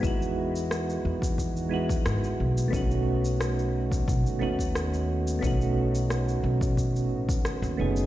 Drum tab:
SH |xx-xxx-xxx-xxx-x|xx-xxx-xxx-xxx-x|xx-xxx-xxx-xxx-x|
SD |----r-------r---|----r-------r---|----r-------r---|
BD |o------oo--o----|o------oo--o----|o------oo--o----|